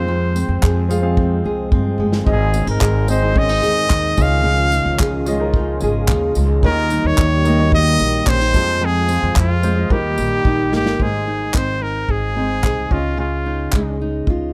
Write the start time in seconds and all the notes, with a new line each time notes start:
Already playing: F2 F3 G#3 C4 F4 G#4 C5 F5
0.08 F2
0.36 C4, tambourine
0.49 F2
0.63 F2 G#4, kick, clap
0.89 G#3 C4 F4 G#4 F5, tambourine
1.02 C4 F4 G#4 F5
1.17 C4, kick
1.44 C2 G#4
1.72 G2 C4, kick
1.98 G1 G#3
2.12 snare
2.24 G#1 G#2 D#3 C4 D#4 G#4 D#5, kick
2.31 G#4
2.54 C#4, tambourine
2.67 G#1 D#4 A#4
2.81 G#1 G#4, kick, clap
3.08 C4 D#4 G#4 C5 D#5, tambourine
3.22 C4 D#4 G#4 D#5
3.36 C#4 D#5, kick
3.49 D#4
3.62 D#2 G#4, tambourine
3.89 D#2 D#4, kick, clap
4.17 C#2 C#3 F3 G#3 C#4 F4 G#4 D#5, kick, tambourine
4.22 F5
4.44 C#3
4.72 D#4, tambourine
4.86 C#2
5.00 C#2 G#4, kick, clap
5.26 G#3 C#4 F4 G#4 D#5, tambourine
5.38 C#4 D#4 G#4 A#4
5.46 F4
5.54 D#4, kick
5.81 G#1 G#4 G#5, tambourine
6.08 D#2 D#4 F5, kick, clap
6.35 C#2 G#3, tambourine
6.63 D#2 D#3 G3 A#3 D#4 G4 A#4 C#5, kick
6.71 D#5
6.90 D#4, tambourine
7.04 D#2 C#5
7.18 D#2 G4, kick, clap
7.44 A#3 D#4 G4 D#5, tambourine
7.58 A#3 D#4 F#4 C#5
7.66 G4
7.72 D#4 D#5, kick
7.99 A#1 G4, tambourine
8.27 A#1 C#4 C5, kick, clap
8.41 D#4
8.54 F2 G#3 C4 F4 C5, kick, tambourine
8.81 F2
8.86 G#4
9.08 C4, tambourine
9.23 F2
9.36 F2 F4, kick, clap
9.62 G#3 C4 F4 C5, tambourine
9.75 G#3 C4 F4 D#5
9.90 D#2 D#3 G3 A#3 D#4 G4 A#4, kick
10.18 A#1 G4, tambourine
10.45 A#1 D#4, kick
10.72 G1 A#3 G4, snare
10.86 snare
10.99 G#1 G#2 G#3 D#4 G#4 C5, kick
11.27 D#4
11.54 G#1 C4 C5, kick, clap
11.82 D#4 A#4
12.09 G#1 G#4, kick
12.35 G#3 C4 D#4 C5
12.63 C2 G#4, kick, clap
12.89 C#2 C#3 C#4 F4 D#5, kick
13.18 C#3 F4
13.46 D#4
13.72 C#2 G#3, kick, clap
14.01 D#4
14.27 C#2 F4, kick